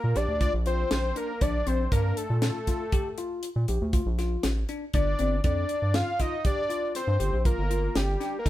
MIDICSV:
0, 0, Header, 1, 5, 480
1, 0, Start_track
1, 0, Tempo, 502934
1, 1354, Time_signature, 7, 2, 24, 8
1, 8108, End_track
2, 0, Start_track
2, 0, Title_t, "Analog synth lead"
2, 0, Program_c, 0, 81
2, 0, Note_on_c, 0, 70, 94
2, 156, Note_on_c, 0, 74, 101
2, 171, Note_off_c, 0, 70, 0
2, 390, Note_off_c, 0, 74, 0
2, 395, Note_on_c, 0, 74, 96
2, 503, Note_off_c, 0, 74, 0
2, 636, Note_on_c, 0, 72, 88
2, 858, Note_off_c, 0, 72, 0
2, 877, Note_on_c, 0, 72, 88
2, 1099, Note_off_c, 0, 72, 0
2, 1119, Note_on_c, 0, 70, 83
2, 1351, Note_on_c, 0, 74, 89
2, 1366, Note_off_c, 0, 70, 0
2, 1593, Note_on_c, 0, 72, 82
2, 1608, Note_off_c, 0, 74, 0
2, 1826, Note_off_c, 0, 72, 0
2, 1832, Note_on_c, 0, 70, 83
2, 2072, Note_on_c, 0, 69, 75
2, 2086, Note_off_c, 0, 70, 0
2, 2309, Note_off_c, 0, 69, 0
2, 2314, Note_on_c, 0, 69, 79
2, 3237, Note_off_c, 0, 69, 0
2, 4717, Note_on_c, 0, 74, 92
2, 5163, Note_off_c, 0, 74, 0
2, 5193, Note_on_c, 0, 74, 90
2, 5676, Note_on_c, 0, 77, 108
2, 5691, Note_off_c, 0, 74, 0
2, 5922, Note_on_c, 0, 75, 104
2, 5936, Note_off_c, 0, 77, 0
2, 6158, Note_off_c, 0, 75, 0
2, 6167, Note_on_c, 0, 74, 104
2, 6608, Note_off_c, 0, 74, 0
2, 6641, Note_on_c, 0, 72, 86
2, 7084, Note_off_c, 0, 72, 0
2, 7119, Note_on_c, 0, 70, 95
2, 7596, Note_on_c, 0, 67, 78
2, 7611, Note_off_c, 0, 70, 0
2, 8002, Note_off_c, 0, 67, 0
2, 8008, Note_on_c, 0, 70, 69
2, 8078, Note_on_c, 0, 69, 89
2, 8092, Note_off_c, 0, 70, 0
2, 8108, Note_off_c, 0, 69, 0
2, 8108, End_track
3, 0, Start_track
3, 0, Title_t, "Tine electric piano"
3, 0, Program_c, 1, 4
3, 148, Note_on_c, 1, 67, 69
3, 293, Note_off_c, 1, 67, 0
3, 391, Note_on_c, 1, 65, 64
3, 535, Note_off_c, 1, 65, 0
3, 629, Note_on_c, 1, 65, 63
3, 917, Note_off_c, 1, 65, 0
3, 1105, Note_on_c, 1, 62, 69
3, 1251, Note_off_c, 1, 62, 0
3, 1350, Note_on_c, 1, 62, 73
3, 1495, Note_off_c, 1, 62, 0
3, 1591, Note_on_c, 1, 60, 60
3, 1736, Note_off_c, 1, 60, 0
3, 1836, Note_on_c, 1, 62, 73
3, 2122, Note_off_c, 1, 62, 0
3, 2315, Note_on_c, 1, 65, 65
3, 2458, Note_off_c, 1, 65, 0
3, 2559, Note_on_c, 1, 65, 67
3, 2701, Note_off_c, 1, 65, 0
3, 2794, Note_on_c, 1, 67, 75
3, 2938, Note_off_c, 1, 67, 0
3, 3035, Note_on_c, 1, 65, 72
3, 3322, Note_off_c, 1, 65, 0
3, 3517, Note_on_c, 1, 67, 66
3, 3660, Note_off_c, 1, 67, 0
3, 3754, Note_on_c, 1, 65, 65
3, 3898, Note_off_c, 1, 65, 0
3, 3997, Note_on_c, 1, 65, 65
3, 4283, Note_off_c, 1, 65, 0
3, 4476, Note_on_c, 1, 62, 68
3, 4619, Note_off_c, 1, 62, 0
3, 4721, Note_on_c, 1, 62, 72
3, 4863, Note_off_c, 1, 62, 0
3, 4955, Note_on_c, 1, 60, 67
3, 5098, Note_off_c, 1, 60, 0
3, 5197, Note_on_c, 1, 62, 69
3, 5483, Note_off_c, 1, 62, 0
3, 5678, Note_on_c, 1, 65, 71
3, 5820, Note_off_c, 1, 65, 0
3, 5913, Note_on_c, 1, 65, 73
3, 6057, Note_off_c, 1, 65, 0
3, 6158, Note_on_c, 1, 67, 72
3, 6301, Note_off_c, 1, 67, 0
3, 6391, Note_on_c, 1, 65, 69
3, 6679, Note_off_c, 1, 65, 0
3, 6871, Note_on_c, 1, 67, 68
3, 7015, Note_off_c, 1, 67, 0
3, 7115, Note_on_c, 1, 65, 67
3, 7258, Note_off_c, 1, 65, 0
3, 7354, Note_on_c, 1, 65, 64
3, 7640, Note_off_c, 1, 65, 0
3, 7830, Note_on_c, 1, 62, 67
3, 7975, Note_off_c, 1, 62, 0
3, 8070, Note_on_c, 1, 63, 76
3, 8108, Note_off_c, 1, 63, 0
3, 8108, End_track
4, 0, Start_track
4, 0, Title_t, "Analog synth bass"
4, 0, Program_c, 2, 38
4, 37, Note_on_c, 2, 46, 84
4, 133, Note_off_c, 2, 46, 0
4, 153, Note_on_c, 2, 34, 92
4, 251, Note_off_c, 2, 34, 0
4, 268, Note_on_c, 2, 38, 83
4, 466, Note_off_c, 2, 38, 0
4, 512, Note_on_c, 2, 34, 88
4, 806, Note_off_c, 2, 34, 0
4, 872, Note_on_c, 2, 34, 77
4, 1068, Note_off_c, 2, 34, 0
4, 1351, Note_on_c, 2, 34, 104
4, 1548, Note_off_c, 2, 34, 0
4, 1591, Note_on_c, 2, 34, 81
4, 1788, Note_off_c, 2, 34, 0
4, 1831, Note_on_c, 2, 43, 82
4, 2028, Note_off_c, 2, 43, 0
4, 2195, Note_on_c, 2, 46, 74
4, 2390, Note_off_c, 2, 46, 0
4, 3396, Note_on_c, 2, 46, 84
4, 3493, Note_off_c, 2, 46, 0
4, 3518, Note_on_c, 2, 34, 96
4, 3615, Note_off_c, 2, 34, 0
4, 3640, Note_on_c, 2, 38, 88
4, 3834, Note_off_c, 2, 38, 0
4, 3875, Note_on_c, 2, 34, 91
4, 4168, Note_off_c, 2, 34, 0
4, 4237, Note_on_c, 2, 33, 79
4, 4432, Note_off_c, 2, 33, 0
4, 4716, Note_on_c, 2, 31, 96
4, 4911, Note_off_c, 2, 31, 0
4, 4959, Note_on_c, 2, 31, 79
4, 5153, Note_off_c, 2, 31, 0
4, 5196, Note_on_c, 2, 41, 84
4, 5391, Note_off_c, 2, 41, 0
4, 5557, Note_on_c, 2, 43, 76
4, 5752, Note_off_c, 2, 43, 0
4, 6751, Note_on_c, 2, 43, 83
4, 6850, Note_off_c, 2, 43, 0
4, 6872, Note_on_c, 2, 31, 93
4, 6971, Note_off_c, 2, 31, 0
4, 6994, Note_on_c, 2, 34, 84
4, 7190, Note_off_c, 2, 34, 0
4, 7236, Note_on_c, 2, 31, 85
4, 7528, Note_off_c, 2, 31, 0
4, 7591, Note_on_c, 2, 31, 84
4, 7788, Note_off_c, 2, 31, 0
4, 8071, Note_on_c, 2, 29, 98
4, 8108, Note_off_c, 2, 29, 0
4, 8108, End_track
5, 0, Start_track
5, 0, Title_t, "Drums"
5, 149, Note_on_c, 9, 38, 29
5, 149, Note_on_c, 9, 42, 48
5, 245, Note_off_c, 9, 38, 0
5, 245, Note_off_c, 9, 42, 0
5, 388, Note_on_c, 9, 42, 64
5, 389, Note_on_c, 9, 36, 87
5, 484, Note_off_c, 9, 36, 0
5, 484, Note_off_c, 9, 42, 0
5, 628, Note_on_c, 9, 42, 50
5, 723, Note_off_c, 9, 42, 0
5, 867, Note_on_c, 9, 38, 99
5, 867, Note_on_c, 9, 42, 74
5, 963, Note_off_c, 9, 38, 0
5, 963, Note_off_c, 9, 42, 0
5, 1108, Note_on_c, 9, 42, 48
5, 1203, Note_off_c, 9, 42, 0
5, 1348, Note_on_c, 9, 42, 72
5, 1350, Note_on_c, 9, 36, 93
5, 1443, Note_off_c, 9, 42, 0
5, 1445, Note_off_c, 9, 36, 0
5, 1591, Note_on_c, 9, 42, 50
5, 1686, Note_off_c, 9, 42, 0
5, 1830, Note_on_c, 9, 42, 80
5, 1831, Note_on_c, 9, 36, 94
5, 1926, Note_off_c, 9, 42, 0
5, 1927, Note_off_c, 9, 36, 0
5, 2072, Note_on_c, 9, 42, 63
5, 2167, Note_off_c, 9, 42, 0
5, 2309, Note_on_c, 9, 38, 99
5, 2309, Note_on_c, 9, 42, 75
5, 2404, Note_off_c, 9, 38, 0
5, 2404, Note_off_c, 9, 42, 0
5, 2551, Note_on_c, 9, 38, 30
5, 2551, Note_on_c, 9, 42, 60
5, 2552, Note_on_c, 9, 36, 60
5, 2647, Note_off_c, 9, 36, 0
5, 2647, Note_off_c, 9, 38, 0
5, 2647, Note_off_c, 9, 42, 0
5, 2790, Note_on_c, 9, 42, 74
5, 2792, Note_on_c, 9, 36, 96
5, 2886, Note_off_c, 9, 42, 0
5, 2887, Note_off_c, 9, 36, 0
5, 3031, Note_on_c, 9, 42, 54
5, 3127, Note_off_c, 9, 42, 0
5, 3271, Note_on_c, 9, 42, 75
5, 3366, Note_off_c, 9, 42, 0
5, 3513, Note_on_c, 9, 42, 53
5, 3609, Note_off_c, 9, 42, 0
5, 3751, Note_on_c, 9, 42, 63
5, 3753, Note_on_c, 9, 36, 85
5, 3847, Note_off_c, 9, 42, 0
5, 3848, Note_off_c, 9, 36, 0
5, 3995, Note_on_c, 9, 38, 30
5, 3995, Note_on_c, 9, 42, 47
5, 4090, Note_off_c, 9, 38, 0
5, 4090, Note_off_c, 9, 42, 0
5, 4232, Note_on_c, 9, 38, 92
5, 4232, Note_on_c, 9, 42, 78
5, 4327, Note_off_c, 9, 38, 0
5, 4327, Note_off_c, 9, 42, 0
5, 4473, Note_on_c, 9, 42, 50
5, 4569, Note_off_c, 9, 42, 0
5, 4710, Note_on_c, 9, 42, 69
5, 4714, Note_on_c, 9, 36, 93
5, 4806, Note_off_c, 9, 42, 0
5, 4809, Note_off_c, 9, 36, 0
5, 4951, Note_on_c, 9, 42, 55
5, 5047, Note_off_c, 9, 42, 0
5, 5192, Note_on_c, 9, 42, 74
5, 5194, Note_on_c, 9, 36, 101
5, 5287, Note_off_c, 9, 42, 0
5, 5289, Note_off_c, 9, 36, 0
5, 5431, Note_on_c, 9, 42, 55
5, 5526, Note_off_c, 9, 42, 0
5, 5671, Note_on_c, 9, 38, 105
5, 5671, Note_on_c, 9, 42, 76
5, 5766, Note_off_c, 9, 38, 0
5, 5766, Note_off_c, 9, 42, 0
5, 5913, Note_on_c, 9, 38, 31
5, 5913, Note_on_c, 9, 42, 57
5, 5914, Note_on_c, 9, 36, 63
5, 6008, Note_off_c, 9, 38, 0
5, 6008, Note_off_c, 9, 42, 0
5, 6010, Note_off_c, 9, 36, 0
5, 6153, Note_on_c, 9, 42, 72
5, 6154, Note_on_c, 9, 36, 102
5, 6248, Note_off_c, 9, 42, 0
5, 6249, Note_off_c, 9, 36, 0
5, 6397, Note_on_c, 9, 42, 58
5, 6492, Note_off_c, 9, 42, 0
5, 6634, Note_on_c, 9, 38, 30
5, 6634, Note_on_c, 9, 42, 79
5, 6729, Note_off_c, 9, 38, 0
5, 6729, Note_off_c, 9, 42, 0
5, 6873, Note_on_c, 9, 42, 60
5, 6969, Note_off_c, 9, 42, 0
5, 7113, Note_on_c, 9, 36, 81
5, 7114, Note_on_c, 9, 42, 66
5, 7208, Note_off_c, 9, 36, 0
5, 7209, Note_off_c, 9, 42, 0
5, 7357, Note_on_c, 9, 42, 54
5, 7452, Note_off_c, 9, 42, 0
5, 7592, Note_on_c, 9, 38, 97
5, 7592, Note_on_c, 9, 42, 78
5, 7688, Note_off_c, 9, 38, 0
5, 7688, Note_off_c, 9, 42, 0
5, 7834, Note_on_c, 9, 38, 27
5, 7834, Note_on_c, 9, 42, 47
5, 7930, Note_off_c, 9, 38, 0
5, 7930, Note_off_c, 9, 42, 0
5, 8072, Note_on_c, 9, 36, 94
5, 8075, Note_on_c, 9, 42, 74
5, 8108, Note_off_c, 9, 36, 0
5, 8108, Note_off_c, 9, 42, 0
5, 8108, End_track
0, 0, End_of_file